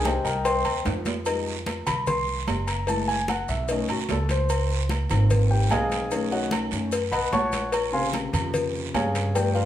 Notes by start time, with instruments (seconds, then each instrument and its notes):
Already playing: upright bass C2, grand piano D#3 A#3 D4
0.05 grand piano G4 C5 D#5 G5, cowbell, high conga, low timbale, low agogo, short guiro, maracas
0.24 upright bass C2, grand piano A#4 D#5 G5 A#5, high conga, short guiro, maracas
0.45 grand piano C5 D#5 G5 C6, cowbell, high conga, low agogo, long guiro, maracas
0.65 upright bass D#2, cowbell, high conga, low agogo, maracas
0.85 upright bass F2, cowbell, high conga, high timbale, short guiro, maracas
1.05 cowbell, high conga, low timbale, short guiro, maracas
1.25 grand piano G3 G#3 D#4, cowbell, high conga, low agogo, long guiro, maracas
1.46 high conga, maracas
1.66 cowbell, high conga, low timbale, low agogo, short guiro, maracas
1.86 upright bass C2, grand piano B5, cowbell, low conga, low agogo, short guiro, maracas
2.07 grand piano C6, cowbell, high conga, low conga, long guiro, maracas
2.27 high conga, maracas
2.47 upright bass F#1, cowbell, high conga, low timbale, low agogo, short guiro, maracas
2.67 grand piano A#5, cowbell, short guiro, maracas
2.87 grand piano G#3 A3 E4 A5, cowbell, high conga, low agogo, long guiro, maracas
3.08 grand piano G#5, high conga, low agogo, maracas
3.28 grand piano F#5, cowbell, high conga, low timbale, low agogo, short guiro, maracas
3.48 upright bass B1, grand piano E5, high conga, short guiro, maracas
3.68 grand piano D#3 A3 C#4 D#5, cowbell, high conga, low agogo, long guiro, maracas
3.88 upright bass B1, grand piano F#4, cowbell, high conga, low agogo, maracas
4.09 upright bass C#2, grand piano A4, cowbell, high conga, low timbale, short guiro, maracas
4.29 grand piano C5, cowbell, high conga, short guiro, maracas
4.49 cowbell, high conga, low agogo, long guiro, maracas
4.69 high conga, maracas
4.89 cowbell, high conga, low timbale, low agogo, short guiro, maracas
5.09 upright bass G#1, grand piano D#3 F3 A#3 C4, cowbell, low conga, low agogo, short guiro, maracas
5.30 cowbell, high conga, low conga, long guiro, maracas
5.50 grand piano G4 G5, high conga, maracas
5.70 upright bass B1, grand piano G#4 D#5 F5 G#5, cowbell, high conga, low timbale, low agogo, short guiro, maracas
5.90 cowbell, high conga, short guiro, maracas
6.10 grand piano D#3 A3 C#4, cowbell, high conga, low agogo, long guiro, maracas
6.31 grand piano F#4 C#5 D#5 F#5, high conga, low agogo, maracas
6.51 cowbell, high conga, low timbale, low agogo, short guiro, maracas
6.71 upright bass F#2, grand piano D#3 A3 C#4, high conga, short guiro, maracas
6.91 cowbell, high conga, low agogo, long guiro, maracas
7.12 upright bass B1, grand piano B4 D#5 F#5 B5, cowbell, high conga, low agogo, maracas
7.31 upright bass A#1, grand piano C#5 F#5 A5 C#6, cowbell, high conga, low timbale, short guiro, maracas
7.52 cowbell, high conga, short guiro, maracas
7.72 cowbell, high conga, low agogo, long guiro, maracas
7.92 grand piano C3 C#3 A#3 C5 F5 G#5 C6, high conga, maracas
8.13 cowbell, high conga, low timbale, low agogo, short guiro, maracas
8.33 upright bass F2, cowbell, low conga, low agogo, short guiro, maracas
8.54 cowbell, high conga, low conga, long guiro, maracas
8.74 high conga, maracas
8.94 upright bass G2, grand piano G#4 C#5 F5 G#5, cowbell, high conga, low timbale, low agogo, short guiro, maracas
9.15 cowbell, short guiro, maracas
9.34 grand piano F3 A3 B3 G4 B4 D5 G5, cowbell, high conga, low agogo, long guiro, maracas
9.55 grand piano F4 B4 D5 F5, high conga, low agogo, maracas